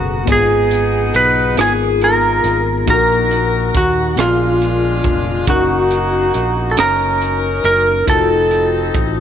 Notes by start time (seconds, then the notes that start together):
Already playing: F#1 B2 A#3 B3 F#4 G#4 A4 A#4
0.25 G#1 G#2 B3 D#4 F4 G4 G#4, kick, closed hi-hat
0.29 B3 D#4 G#4
0.35 G#4
0.71 closed hi-hat
1.14 B1 B4, closed hi-hat
1.55 G#1 B3 D#4 F4 G#4 A#4, cross-stick, closed hi-hat
1.61 G#4
1.66 G#4
2.01 D#4 F4 A#4, closed hi-hat
2.44 G#1, closed hi-hat
2.86 A#1 A#2 A#3 D#4 F#4 A4 A#4, kick, closed hi-hat
2.90 A#4
2.96 A#4
3.31 closed hi-hat
3.75 D#2 F#4, kick, cross-stick, closed hi-hat
4.16 A#1 A#2 G#3 B3 C#4 D4 F4 G#4 A#4, cross-stick, closed hi-hat
4.20 D4 F4
4.61 closed hi-hat
5.04 F1, kick, closed hi-hat
5.47 F#1 A#3 C#4 D#4 F#4 A#4, kick, closed hi-hat
5.91 closed hi-hat
6.34 A#1, closed hi-hat
6.71 A4
6.76 F#1 C#4 D#4 F#4 A#4 C#5, cross-stick, closed hi-hat
7.22 closed hi-hat
7.64 F#1 A#4, closed hi-hat
8.06 F1 C4 D#4 F4 F#4 A4, kick, closed hi-hat
8.51 closed hi-hat
8.94 A1, kick, closed hi-hat